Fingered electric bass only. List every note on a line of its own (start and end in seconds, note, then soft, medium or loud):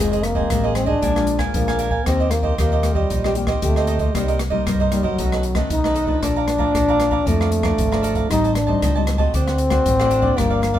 0.00 0.43 F1 medium
0.51 0.95 A1 medium
1.02 1.47 A#1 medium
1.54 1.99 A#1 medium
2.06 2.51 D#2 medium
2.59 3.03 D#2 medium
3.11 3.55 A#1 medium
3.63 4.07 D2 medium
4.15 4.59 C2 medium
4.67 5.11 C2 medium
5.19 5.63 B1 medium
5.71 6.15 B1 medium
6.23 6.67 A#1 medium
6.75 7.19 A#1 medium
7.27 7.71 F2 loud
7.79 8.23 G#1 medium
8.31 8.75 A1 medium
8.83 9.27 C#2 medium
9.34 9.78 D2 medium
9.86 10.30 A1 medium
10.38 10.79 G1 medium